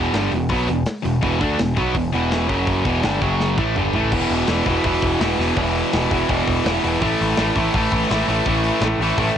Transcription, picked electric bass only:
0.00 0.12 E1 medium
0.13 0.30 G1 medium
0.32 0.48 E1 medium
0.49 0.66 B1 medium
0.67 0.84 E1 medium
1.05 1.21 E1 medium
1.22 1.39 E1 medium
1.41 1.57 D2 loud
1.58 1.75 E1 medium
1.77 1.94 B1 medium
1.94 2.11 E1 medium
2.14 2.47 E1 medium
2.49 2.83 F#1 medium
2.85 3.02 E1 medium
3.04 3.21 G1 medium
3.22 3.56 F#1 medium
3.58 3.75 A1 medium
3.77 3.93 G1 medium
3.94 4.11 A1 medium
4.12 4.24 E1 medium
4.30 4.43 E1 medium
4.48 4.60 E1 medium
4.66 4.78 E1 medium
4.84 4.97 E1 medium
5.02 5.15 E1 medium
5.21 5.33 E1 loud
5.38 5.51 E1 medium
5.57 5.82 E1 medium
5.94 6.06 E1 medium
6.11 6.23 E1 medium
6.29 6.41 E1 loud
6.48 6.60 E1 medium
6.66 6.78 E1 loud
6.85 6.96 E1 medium
7.01 7.13 A1 medium
7.21 7.33 A1 loud
7.39 7.50 A1 medium
7.56 7.68 A1 medium
7.75 7.86 A1 loud
7.92 8.04 A1 medium
8.11 8.22 A1 loud
8.28 8.40 A1 medium
8.46 8.70 A1 medium
8.81 8.93 A1 loud
8.98 9.11 A1 medium
9.17 9.30 A1 loud

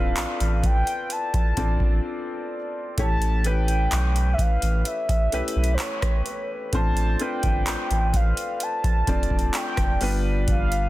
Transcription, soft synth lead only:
0.00 0.64 F5 medium
0.66 1.14 G5 loud
1.12 2.52 A5 loud
3.00 3.48 A5 loud
3.47 4.35 G5 loud
4.34 4.42 E5 medium
4.41 4.89 F5 loud
4.87 5.76 E5 loud
5.74 5.82 C5 medium
5.81 6.50 C#5 loud
6.75 7.23 A5 loud
7.22 8.18 G5 loud
8.16 8.64 F5 loud
8.63 9.55 A5 loud
9.56 10.22 G5 loud
10.50 10.89 F5 loud

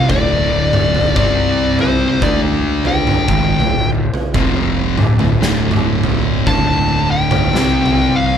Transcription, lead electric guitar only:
0.10 1.15 D5 medium
1.16 1.76 D5 medium
1.81 2.25 C5 medium
2.23 2.39 D5 medium
2.87 3.89 G5 medium
6.48 7.11 A5 loud
7.11 8.20 G5 loud
8.16 8.38 F5 medium

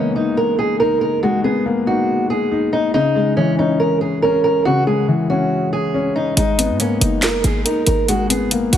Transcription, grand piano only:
0.00 0.59 G#3 loud
0.00 1.01 A#3 medium
0.00 0.80 B3 medium
0.16 0.78 D#4 medium
0.80 1.85 D#4 medium
1.23 2.30 G#3 loud
1.44 2.51 B3 medium
1.66 2.73 A#3 medium
1.87 2.50 D#4 medium
2.52 2.94 D#4 medium
2.94 4.01 C#3 medium
3.16 4.23 G#3 medium
3.37 4.44 E3 medium
3.58 4.21 C#4 medium
4.23 5.28 C#4 medium
4.65 5.73 C#3 medium
4.87 5.94 G#3 medium
5.08 6.15 E3 medium
5.30 5.93 C#4 medium
5.94 6.37 C#4 medium
6.37 7.44 G#3 medium
6.58 7.66 B3 medium
6.80 7.87 A#3 medium
7.02 7.64 D#4 medium
7.66 8.71 D#4 medium
8.09 8.77 G#3 loud
8.30 8.77 B3 medium
8.51 8.77 A#3 medium
8.73 8.77 D#4 medium

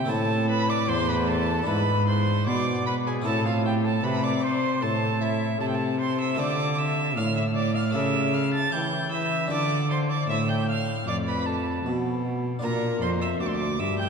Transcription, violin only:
0.00 0.11 G5 loud
0.09 0.49 A5 loud
0.50 0.71 B5 loud
0.70 0.90 D6 loud
0.89 1.10 C6 loud
1.09 1.29 B5 loud
1.28 1.68 A5 loud
1.68 2.07 B5 loud
2.08 2.46 C6 loud
2.47 2.85 D6 loud
2.86 2.94 B5 loud
3.06 3.14 G#5 medium
3.26 3.45 A5 loud
3.46 3.65 F5 medium
3.65 3.73 G5 loud
3.85 4.06 A5 loud
4.04 4.25 B5 loud
4.24 4.45 D6 loud
4.43 4.84 C6 loud
4.82 5.23 A5 loud
5.22 5.60 E5 loud
5.61 5.69 A5 medium
5.68 5.76 G5 medium
5.75 6.00 A5 loud
6.01 6.19 C6 loud
6.20 6.41 E6 loud
6.40 6.79 D6 loud
6.78 7.16 E6 loud
7.17 7.36 F6 loud
7.36 7.44 E6 medium
7.55 7.74 D6 loud
7.75 7.93 F6 loud
7.94 8.36 E6 loud
8.34 8.53 F6 loud
8.53 8.74 A6 loud
8.72 9.11 G6 loud
9.11 9.50 E6 loud
9.51 9.89 D6 loud
9.90 9.98 C6 loud
10.10 10.28 D6 loud
10.29 10.50 E6 loud
10.49 10.68 G6 medium
10.69 11.07 F6 loud
11.07 11.15 D6 loud
11.27 11.48 B5 loud
11.46 11.85 A5 medium
12.63 12.99 A#5 loud
13.02 13.09 C6 loud
13.22 13.29 E6 loud
13.40 13.49 D6 loud
13.48 13.56 C6 medium
13.55 13.81 D6 loud
13.80 13.98 E6 loud
13.99 14.09 G6 loud

